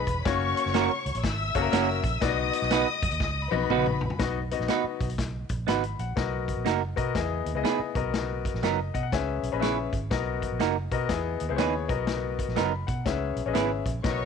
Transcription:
Already playing: string section B4 B5
0.07 fingered electric bass E1, kick, closed hi-hat
0.25 fingered electric bass F#1, grand piano A#3 C#4 F#4 C#5, string section C#5 C#6, kick, snare, closed hi-hat
0.57 closed hi-hat
0.66 fingered electric bass F#1, snare
0.74 clean electric guitar A#3 C#4 F#4 A#4, snare, closed hi-hat
1.06 fingered electric bass C#2, closed hi-hat
1.15 fingered electric bass A#1, closed hi-hat
1.24 fingered electric bass G#1, string section E5 E6, kick, snare, closed hi-hat
1.55 fingered electric bass F#1, grand piano A#3 C#4 F#4 A4, kick, closed hi-hat
1.62 grand piano A#4
1.72 fingered electric bass F#1, clean electric guitar A#3 C#4 F#4 A#4, snare, closed hi-hat
2.04 fingered electric bass A#1, kick, closed hi-hat
2.21 fingered electric bass B1, grand piano B3 D#4 F#4 D5, string section D#5 D#6, kick, snare, closed hi-hat
2.29 grand piano D#5
2.53 closed hi-hat
2.62 fingered electric bass B1, snare
2.70 clean electric guitar B3 D#4 F#4 B4, snare, closed hi-hat
3.02 fingered electric bass F#2, kick, closed hi-hat
3.11 fingered electric bass D#2, closed hi-hat
3.20 fingered electric bass C#2, kick, snare
3.51 fingered electric bass B1, grand piano B3 D#4 F#4 D#5, string section B4 B5, high tom
3.70 fingered electric bass A#1, clean electric guitar B3 D#4 F#4 B4, mid tom
3.86 mid tom
4.01 fingered electric bass A#1, floor tom
4.10 floor tom
4.19 fingered electric bass B1, grand piano B3 D#4 F#4 D#5, kick, snare, closed hi-hat
4.51 grand piano B3 D#4 F#4 D#5, closed hi-hat
4.59 fingered electric bass A#1, snare
4.68 clean electric guitar B3 D#4 F#4 B4, snare, closed hi-hat
4.84 muted fingered electric bass stroke
5.01 fingered electric bass B1, kick, closed hi-hat
5.10 closed hi-hat
5.18 kick, snare, closed hi-hat
5.49 fingered electric bass A#1, kick, closed hi-hat
5.67 fingered electric bass G#1, clean electric guitar B3 D#4 F#4 B4, grand piano B5, snare, closed hi-hat
5.83 closed hi-hat
5.99 fingered electric bass A#1, grand piano F#5, closed hi-hat
6.16 fingered electric bass B1, grand piano B3 F#4 A#4 D#5, kick, snare, closed hi-hat
6.48 kick, closed hi-hat
6.57 fingered electric bass A#1
6.65 fingered electric bass F#1, clean electric guitar A#3 D#4 F#4 A#4, snare, closed hi-hat
6.96 fingered electric bass B2, grand piano B3 F#4 A#4 D#5, kick, closed hi-hat
7.15 fingered electric bass E2, grand piano B3 E4 G#4 D#5, kick, snare, closed hi-hat
7.46 fingered electric bass D#2, closed hi-hat
7.54 fingered electric bass C#2, grand piano B3 E4 G#4 D#5
7.64 clean electric guitar B3 D#4 G#4 B4, snare, closed hi-hat
7.79 muted fingered electric bass stroke
7.95 fingered electric bass B1, grand piano B3 F#4 A#4 D#5, kick, closed hi-hat
8.14 snare, closed hi-hat
8.45 kick, closed hi-hat
8.54 fingered electric bass A#1, snare
8.62 fingered electric bass F#1, clean electric guitar F#3 B3 D#4 A#4, grand piano D#5, snare, closed hi-hat
8.94 fingered electric bass B2, grand piano D#5 F#5, kick, closed hi-hat
9.03 grand piano F#5
9.12 fingered electric bass C#2, grand piano C#4 G#4 B4 E5 G#5, kick, snare, closed hi-hat
9.43 fingered electric bass B1, closed hi-hat
9.52 fingered electric bass A#1, grand piano C#4 G#4 B4 D#5 B5
9.59 clean electric guitar B3 E4 G#4 B4, grand piano E5 C#6, snare, closed hi-hat
9.93 fingered electric bass G#1, kick, closed hi-hat
10.11 fingered electric bass B1, grand piano B3 F#4 A#4 D#5, kick, snare, closed hi-hat
10.42 kick, closed hi-hat
10.52 fingered electric bass A#1
10.59 fingered electric bass F#1, clean electric guitar A#3 D#4 F#4 A#4, snare, closed hi-hat
10.91 fingered electric bass B2, grand piano B3 F#4 A#4 D#5, kick, closed hi-hat
11.09 fingered electric bass E2, grand piano B3 E4 G#4 D#5, kick, snare, closed hi-hat
11.40 fingered electric bass D#2, closed hi-hat
11.49 fingered electric bass C#2, grand piano B3 E4 G#4 C5
11.56 fingered electric bass D#2, clean electric guitar B3 D#4 G#4 B4, grand piano C#5, snare, closed hi-hat
11.88 fingered electric bass B1, grand piano B3 F#4 A#4 D#5, kick, closed hi-hat
12.07 snare, closed hi-hat
12.39 kick, closed hi-hat
12.48 fingered electric bass A#1, snare
12.56 fingered electric bass F#1, clean electric guitar F#3 B3 D#4 A#4, grand piano B5, snare, closed hi-hat
12.87 fingered electric bass B2, grand piano F#5, kick, closed hi-hat
13.05 fingered electric bass C#2, grand piano C#4 G#4 B4 E5, kick, snare, closed hi-hat
13.36 fingered electric bass B1, closed hi-hat
13.46 fingered electric bass A#1, grand piano C#4 G#4 B4 D#5
13.53 fingered electric bass G#1, clean electric guitar B3 E4 G#4 B4, grand piano E5, snare, closed hi-hat
13.86 fingered electric bass A#1, kick, closed hi-hat
14.03 fingered electric bass B1, grand piano B3 F#4 A#4 D#5, string section C#5 C#6, kick, snare, closed hi-hat

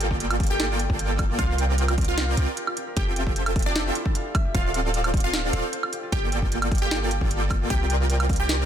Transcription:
Already playing: 808-style bass G1, supersaw synth A#3 F4 A4 D5 G5, harp F4 G4 C5, downlifter
0.01 harp A4, closed hi-hat
0.11 harp F4, kick
0.20 harp G4, closed hi-hat
0.30 harp F4, closed hi-hat, high woodblock
0.40 harp G4, kick, closed hi-hat
0.43 closed hi-hat
0.47 synth pluck G4 G5, harp A4, closed hi-hat
0.60 harp A4, snare, closed hi-hat
0.70 harp F4
0.79 harp G4, closed hi-hat
0.90 808-style bass G1, supersaw synth A#3 F4 A4 D5 G5, harp F4, kick
0.99 harp G4, closed hi-hat
1.09 harp A4
1.19 harp A4, kick, closed hi-hat, high woodblock
1.29 harp F4
1.39 808-style bass C2, supersaw synth C4 F4 A#4 D5 G5, synth pluck F4 F5, harp G4, kick, closed hi-hat
1.49 harp F4
1.58 harp G4, closed hi-hat
1.69 harp A#4
1.78 harp A#4, closed hi-hat
1.88 harp F4, closed hi-hat, high woodblock
1.98 harp G4, kick, closed hi-hat
2.01 closed hi-hat
2.04 harp F4, synth pluck F4 F5, closed hi-hat
2.18 harp G4, snare, closed hi-hat
2.28 harp A#4
2.37 808-style bass C2, supersaw synth C4 F4 A#4 D5 G5, harp A#4, closed hi-hat
2.48 harp F4
2.57 harp G4, closed hi-hat
2.67 harp F4, high woodblock
2.77 harp G4, closed hi-hat
2.87 harp A#4
2.97 808-style bass F1, supersaw synth C4 F4 A4 E5 G5, synth pluck G4 G5, harp A4, kick, closed hi-hat
3.07 harp F4
3.16 harp G4, closed hi-hat
3.27 harp F4, kick
3.36 harp G4, closed hi-hat
3.46 harp A4, closed hi-hat, high woodblock
3.56 harp A4, kick, closed hi-hat
3.59 closed hi-hat
3.62 synth pluck D4 D5, harp F4, closed hi-hat
3.76 harp G4, snare, closed hi-hat
3.86 harp F4
3.95 harp E4, closed hi-hat
4.06 harp A4, kick
4.15 harp F4, closed hi-hat
4.35 harp E5, kick, closed hi-hat, high woodblock
4.45 harp G4
4.55 808-style bass D1, supersaw synth C4 F4 A4 D5 F5, synth pluck F4 F5, harp C5, kick, closed hi-hat
4.65 harp F4
4.74 harp A4, closed hi-hat
4.84 harp F4
4.94 harp A4, closed hi-hat
5.04 harp C5, closed hi-hat, high woodblock
5.14 kick, closed hi-hat
5.17 closed hi-hat
5.20 harp F4, synth pluck F4 F5, closed hi-hat
5.33 harp A4, snare, closed hi-hat
5.44 harp F4
5.53 808-style bass D1, supersaw synth C4 F4 A4 D5 F5, harp A4, closed hi-hat
5.63 harp C5
5.73 harp C5, closed hi-hat
5.83 harp F4, high woodblock
5.93 harp G4, closed hi-hat
6.03 harp F4
6.12 808-style bass G1, supersaw synth A#3 F4 A4 D5 G5, synth pluck G4 G5, kick, closed hi-hat
6.23 harp A4
6.32 harp A4, closed hi-hat
6.42 harp F4, kick
6.52 harp G4, closed hi-hat
6.62 harp F4, closed hi-hat, high woodblock
6.72 harp G4, kick, closed hi-hat
6.75 closed hi-hat
6.78 synth pluck G4 G5, harp A4, closed hi-hat
6.91 harp A4, snare, closed hi-hat
7.01 harp F4
7.11 harp G4, closed hi-hat
7.21 808-style bass G1, supersaw synth A#3 F4 A4 D5 G5, harp F4, kick
7.31 harp G4, closed hi-hat
7.41 harp A4
7.51 kick, closed hi-hat, high woodblock
7.61 harp F4
7.70 808-style bass C2, supersaw synth C4 F4 A#4 D5 G5, harp G4, synth pluck G4 G5, kick, closed hi-hat
7.80 harp F4
7.90 harp G4, closed hi-hat
8.00 harp A#4
8.10 harp A#4, closed hi-hat
8.20 harp F4, closed hi-hat, high woodblock
8.29 harp G4, kick, closed hi-hat
8.33 closed hi-hat
8.36 harp F4, synth pluck G4 G5, closed hi-hat
8.49 harp G4, snare, closed hi-hat
8.60 harp A#4

